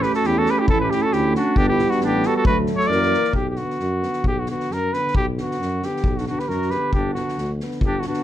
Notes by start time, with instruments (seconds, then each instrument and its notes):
Already playing: euphonium A3, french horn C#4
0.02 clarinet G4, cornet B4, snare
0.13 clarinet F#4, cornet A4, snare
0.23 tuba E2, clarinet E4, cornet G4, snare
0.39 clarinet F#4, cornet A4
0.45 clarinet G4, snare
0.50 cornet B4
0.59 clarinet E4, cornet G4
0.68 tuba A1, clarinet E4, cornet A4, kick
0.80 clarinet G4, cornet B4
0.90 cornet G4, snare
0.95 clarinet E4
1.02 clarinet F#4, cornet A4
1.12 tuba D2, clarinet E4, cornet G4, snare
1.35 clarinet D4, cornet F#4, snare
1.56 tuba G1, euphonium G3, french horn B3, clarinet D4, cornet G4, kick
1.69 clarinet E4, cornet G4
1.78 snare
1.90 clarinet D4, cornet F#4, snare
2.00 tuba A1, clarinet D4, snare
2.06 cornet G4
2.23 clarinet F#4, snare
2.27 cornet A4
2.37 clarinet F#4, cornet A4
2.45 tuba D2, euphonium F#3, french horn A3, clarinet F#4, cornet B4, kick
2.66 snare
2.76 clarinet A4, cornet C#5, snare
2.87 tuba F#2, euphonium E3, clarinet A#4, cornet D5
2.91 french horn A#3, snare
3.02 snare
3.13 snare
3.23 snare
3.33 tuba B1, cornet G4, kick
3.49 cornet G4
3.55 euphonium D3, french horn B3, cornet F#4, snare
3.70 snare
3.79 tuba F#2, snare
4.01 euphonium D3, french horn B3, snare
4.12 snare
4.24 tuba B1, cornet G4, kick
4.39 cornet F#4
4.46 euphonium D3, french horn B3, snare
4.51 cornet F#4
4.60 snare
4.70 tuba F#2, cornet A#4, snare
4.91 euphonium D3, french horn B3, cornet B4, snare
5.07 snare
5.15 tuba B1, cornet G4, kick
5.36 euphonium D3, french horn B3, snare
5.40 cornet F#4
5.51 snare
5.60 tuba F#2, snare
5.80 euphonium D3, french horn B3, snare
5.85 cornet G4
5.96 snare
6.04 tuba B1, kick
6.17 clarinet D4, cornet F#4, snare
6.24 euphonium D3, french horn B3, clarinet D4, cornet F#4, snare
6.39 clarinet G4, cornet B4, snare
6.48 tuba F#2, clarinet F#4, cornet A#4, snare
6.61 snare
6.70 euphonium D3, french horn B3, clarinet G4, cornet B4, snare
6.93 tuba G1, clarinet D4, cornet G4, kick
7.14 euphonium D3, french horn B3, clarinet D4, cornet F#4, snare
7.28 snare
7.37 tuba D2, snare
7.59 euphonium D3, french horn B3, snare
7.71 snare
7.81 tuba G1, kick
7.86 clarinet D4, cornet G4
7.97 clarinet D4, cornet F#4
8.01 euphonium D3, french horn B3, snare
8.06 clarinet D4, cornet F#4
8.13 snare